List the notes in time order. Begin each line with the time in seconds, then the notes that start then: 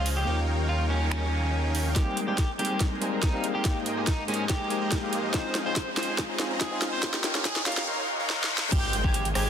Already playing: C#2 C#3 F3 G#3 C#4 D#4 F4 G#4 C5 D#5 F5
0.06 open hi-hat
0.17 G4
0.25 D#2 C#3 G3 A#3 C#4 D#4 F4 G4 A#4 C#5 F5 G5, noise sweep
0.69 F4
0.90 C#4
1.11 C#4, finger snap
1.75 open hi-hat
1.95 D#3 G3 G#3 A#3 C4 D#4 G4 G#4 A#4 C5 G5, kick, snare, closed hi-hat, riser
2.17 closed hi-hat
2.27 G3 G#3 A#3 C4 D#4 G4 G#4 A#4 C5 G#5
2.38 kick, snare, closed hi-hat
2.58 G3 G#3 A#3 C4 D#4 G4 G#4 A#4 C5 G#5, closed hi-hat
2.65 closed hi-hat
2.80 G#3 G#4 A#4 C5 A#5, kick, snare, closed hi-hat
3.01 G3 G#3 A#3 C4 D#4 G#4 A#4 C5 G#5, closed hi-hat
3.13 G#3 G#4 A#4 C5 A#5
3.23 D#4, kick, snare, closed hi-hat
3.33 G3 G#3 A#3 C4 D#4 G#4 A#4 C5 F5
3.44 closed hi-hat
3.55 G4
3.64 G#2 F3 G#3 A#3 D#4 G4 G#4 A#4 C5 D#5 G5, kick, snare, closed hi-hat
3.86 closed hi-hat
3.96 G#3 A#3 D#4 G4 G#4 A#4 C5 D#5 G#5
4.07 D#4, kick, snare, closed hi-hat
4.27 G#3 A#3 C#4 D#4 G4 G#4 A#4 C5 D#5 G#5, closed hi-hat
4.34 closed hi-hat
4.49 G#3 G4 G#4 A#4 C5 D#5 A#5, kick, snare, closed hi-hat
4.70 G#3 A#3 D#4 G4 G#4 A#4 C5 D#5 G#5, closed hi-hat
4.81 G#3 G#4 A#4 C5 D#5 A#5
4.92 kick, snare, closed hi-hat
5.02 G#3 A#3 D#4 G4 G#4 A#4 C5 D#5 F5
5.13 closed hi-hat
5.33 C#3 G#3 C4 C#4 D#4 F4 G#4 C5 D#5 F5, kick, snare, closed hi-hat
5.55 snare, closed hi-hat
5.65 G#3 C4 C#4 D#4 F4 G#4 C5 D#5 G#5
5.76 kick, snare, closed hi-hat
5.96 G#3 C4 C#4 D#4 F4 G#4 C5 D#5 G#5, snare, closed hi-hat
6.03 closed hi-hat
6.18 C#4 G#4 C5 D#5 A#5, kick, snare, closed hi-hat
6.38 G#3 C4 C#4 D#4 F4 G#4 C5 D#5 G#5, snare, closed hi-hat
6.51 C#4 G#4 C5 D#5 A#5
6.61 G#4, kick, snare, closed hi-hat
6.71 G#3 C4 C#4 D#4 F4 G#4 C5 D#5 F5
6.82 snare, closed hi-hat
6.93 C5
7.02 A#3 C#4 D#4 F4 G4 A#4 C#5 F5 G5, kick, snare, closed hi-hat
7.14 snare
7.24 snare, closed hi-hat
7.34 A#3 C#4 D#4 F4 G4 A#4 C#5 F5 A#5, snare
7.45 G#4, kick, snare, closed hi-hat
7.56 snare
7.65 A#3 C#4 D#4 F4 G4 A#4 C#5 F5 A#5, snare, closed hi-hat
7.72 closed hi-hat
7.77 snare
7.87 D#4 A#4 C#5 F5 C6, reverse cymbal
8.20 D#4 A#4 C#5 F5 A#5
8.30 snare
8.41 D#4 A#4 C#5 F5 C6, snare
8.58 snare
8.72 G#1 G#3 G4 G#4 A#4 C5 G5 G6, kick, closed hi-hat, crash, impact
8.93 closed hi-hat
9.04 G#1 G#3 G4 G#4 A#4 C5 G#5 G#6, kick
9.14 closed hi-hat
9.25 closed hi-hat
9.35 G#1 G#3 G4 G#4 A#4 C5 G#5 G#6, cross-stick, open hi-hat